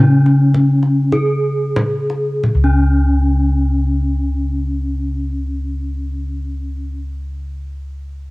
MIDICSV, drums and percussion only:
0, 0, Header, 1, 2, 480
1, 0, Start_track
1, 0, Tempo, 1156069
1, 468, Tempo, 1307190
1, 948, Tempo, 1398601
1, 949, Time_signature, 4, 2, 24, 8
1, 2963, End_track
2, 0, Start_track
2, 0, Title_t, "Kendang"
2, 108, Note_on_c, 9, 62, 25
2, 149, Note_off_c, 9, 62, 0
2, 226, Note_on_c, 9, 62, 24
2, 226, Note_on_c, 9, 64, 61
2, 267, Note_off_c, 9, 62, 0
2, 267, Note_off_c, 9, 64, 0
2, 344, Note_on_c, 9, 62, 26
2, 385, Note_off_c, 9, 62, 0
2, 466, Note_on_c, 9, 62, 24
2, 466, Note_on_c, 9, 64, 67
2, 503, Note_off_c, 9, 62, 0
2, 503, Note_off_c, 9, 64, 0
2, 701, Note_on_c, 9, 62, 27
2, 701, Note_on_c, 9, 63, 62
2, 701, Note_on_c, 9, 64, 63
2, 738, Note_off_c, 9, 62, 0
2, 738, Note_off_c, 9, 63, 0
2, 738, Note_off_c, 9, 64, 0
2, 824, Note_on_c, 9, 62, 26
2, 861, Note_off_c, 9, 62, 0
2, 948, Note_on_c, 9, 64, 71
2, 983, Note_off_c, 9, 64, 0
2, 2963, End_track
0, 0, End_of_file